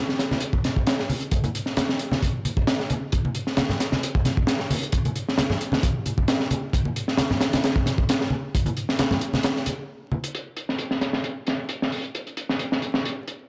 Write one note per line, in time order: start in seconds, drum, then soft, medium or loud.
0.09 snare soft
0.19 snare medium
0.19 closed hi-hat medium
0.31 snare soft
0.31 high conga medium
0.40 closed hi-hat medium
0.53 kick medium
0.64 snare soft
0.64 closed hi-hat medium
0.64 high conga medium
0.76 kick medium
0.87 snare loud
0.87 closed hi-hat medium
0.99 snare soft
1.09 open hi-hat medium
1.09 high conga medium
1.21 closed hi-hat soft
1.31 kick loud
1.31 closed hi-hat medium
1.44 closed hi-hat soft
1.44 high conga medium
1.55 closed hi-hat medium
1.66 snare soft
1.77 snare loud
1.77 closed hi-hat medium
1.77 high conga medium
1.89 snare soft
1.99 closed hi-hat medium
2.12 snare soft
2.12 high conga medium
2.23 kick medium
2.23 closed hi-hat medium
2.45 closed hi-hat medium
2.45 high conga medium
2.57 kick medium
2.67 snare loud
2.67 closed hi-hat medium
2.79 snare soft
2.90 closed hi-hat medium
2.90 high conga medium
3.12 kick medium
3.12 closed hi-hat medium
3.25 high conga medium
3.35 closed hi-hat medium
3.47 snare soft
3.57 snare loud
3.57 closed hi-hat medium
3.57 high conga medium
3.69 snare soft
3.69 low conga medium
3.80 snare soft
3.80 closed hi-hat medium
3.92 snare soft
3.92 high conga medium
4.03 closed hi-hat medium
4.15 kick loud
4.25 snare soft
4.25 closed hi-hat medium
4.25 high conga medium
4.37 kick medium
4.47 snare loud
4.47 closed hi-hat medium
4.60 snare soft
4.70 open hi-hat medium
4.70 high conga medium
4.83 closed hi-hat soft
4.92 kick medium
4.92 closed hi-hat medium
5.05 closed hi-hat soft
5.05 high conga medium
5.16 closed hi-hat medium
5.29 snare soft
5.38 snare loud
5.38 closed hi-hat medium
5.38 high conga medium
5.50 snare soft
5.50 low conga medium
5.61 closed hi-hat medium
5.72 snare medium
5.72 high conga medium
5.83 kick loud
5.83 closed hi-hat medium
6.06 closed hi-hat medium
6.06 high conga medium
6.18 kick medium
6.28 snare loud
6.28 closed hi-hat medium
6.40 snare soft
6.51 closed hi-hat medium
6.51 high conga medium
6.73 kick loud
6.73 closed hi-hat medium
6.85 high conga medium
6.96 closed hi-hat medium
7.08 snare soft
7.17 snare loud
7.17 closed hi-hat medium
7.17 high conga medium
7.31 snare soft
7.31 low conga medium
7.41 snare loud
7.41 closed hi-hat medium
7.53 snare loud
7.53 closed hi-hat medium
7.53 high conga medium
7.64 snare loud
7.64 closed hi-hat medium
7.76 kick loud
7.86 snare soft
7.86 closed hi-hat medium
7.86 high conga medium
7.98 kick loud
8.09 snare loud
8.09 closed hi-hat medium
8.21 snare soft
8.30 high conga medium
8.55 kick loud
8.55 closed hi-hat medium
8.66 closed hi-hat soft
8.66 high conga medium
8.77 closed hi-hat medium
8.89 snare soft
8.99 snare loud
8.99 closed hi-hat medium
8.99 high conga medium
9.11 snare medium
9.11 low conga medium
9.21 closed hi-hat medium
9.34 snare medium
9.34 high conga medium
9.43 snare loud
9.43 closed hi-hat medium
9.56 snare soft
9.66 closed hi-hat medium
9.66 high conga medium
10.12 high conga medium
10.24 closed hi-hat medium
10.35 closed hi-hat medium
10.57 closed hi-hat medium
10.69 snare soft
10.78 closed hi-hat medium
10.91 snare soft
11.01 snare soft
11.01 closed hi-hat medium
11.13 snare soft
11.24 closed hi-hat medium
11.47 snare soft
11.47 closed hi-hat medium
11.69 closed hi-hat medium
11.82 snare soft
11.92 open hi-hat medium
12.04 closed hi-hat soft
12.15 closed hi-hat medium
12.27 closed hi-hat soft
12.37 closed hi-hat medium
12.49 snare soft
12.59 closed hi-hat medium
12.72 snare soft
12.82 closed hi-hat medium
12.94 snare medium
13.05 closed hi-hat medium
13.28 closed hi-hat medium